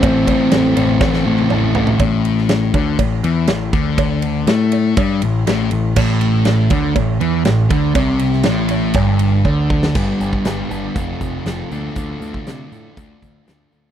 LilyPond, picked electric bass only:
\new Staff \with { instrumentName = "Picked electric bass" } { \clef bass \time 4/4 \key a \minor \tempo 4 = 121 a,,8 a,,8 a,,8 a,,8 a,,8 a,,8 a,,8 a,,8 | a,,4. d,8 a,,8 e,8 a,,8 d,8~ | d,4 a,4 g,8 a,,8 a,,8 a,,8 | a,,4. d,8 a,,8 e,8 a,,8 d,8 |
c,4 a,,4 g,,4 d,4 | g,,8 g,,8 g,,8 g,,8 f,,8 f,,8 f,,8 d,8 | d,8 d,8 c8 a,8 d,8 d,8 d,8 d,8 | }